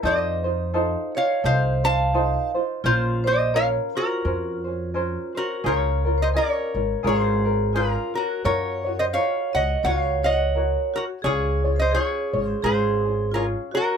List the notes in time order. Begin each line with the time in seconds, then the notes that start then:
0.03 F2 D#4 F4 A4 C5
0.07 D#5
0.44 D#4 F4 C5
0.74 D#4 F4 A4 C5
1.15 D#4 F4 C#5 F5
1.43 C2 D#4 F4 A4 C5 F5
1.84 D#4 F4 C5 F5 A5
2.14 D#4 F4 A4 C5
2.54 D#4 F4 C5
2.84 A#1 C#4 F4 A#4 C5
3.24 C#4 F4 C5 D#5
3.54 C#4 F4 A#4 C#5 F5
3.95 C#4 F4 F#4 A#4 C5
4.24 F2 C#4 A#4 C5
4.64 C#4 C5
4.94 C#4 A#4 C5
5.35 C#4 F#4 A#4 C5
5.64 C#2 C#4 F4 G#4 A#4 C#5
6.05 C#4 F4 A#4
6.18 C5
6.22 C5 D#5
6.34 C#4 F4 G#4 A#4 C#5
6.38 A#4
6.74 G#1 C#4 F4 A#4
7.03 G#1 C#4 F4 G#4 A#4
7.07 G#4 C#5
7.18 C5
7.45 C#4 F4 A#4
7.73 C#4 F4 G#4 A#4
7.77 F4
8.14 C#4 F#4 A#4
8.44 F#2 F4 F#4 A#4 C#5
8.84 F4 F#4 C#5
8.99 C5 D#5
9.13 F4 F#4 A#4 C#5 F5
9.53 C#2 F#4 C#5 D#5 F#5
9.83 C#2 F4 F#4 A#4 C#5 F#5
9.96 F5
10.24 F#4 C#5 D#5 F#5
10.55 F#4 A#4 C#5
10.94 F#4 A#4 C#5
11.22 C#2 C#4 F4 G#4 C#5
11.64 C#4 F4 C#5
11.76 C5 D#5
11.82 C5
11.91 C#4 G#4 C#5
11.95 F4 G#4 C#5
12.33 G#1 C#4 F4 C#5
12.44 C5
12.62 G#1 C#4 F4 G#4 C5
13.05 C#4 F4
13.32 C#4 F4 G#4 A#4
13.36 C#5
13.71 F#4 A#4 C#5
13.76 C#4 F#4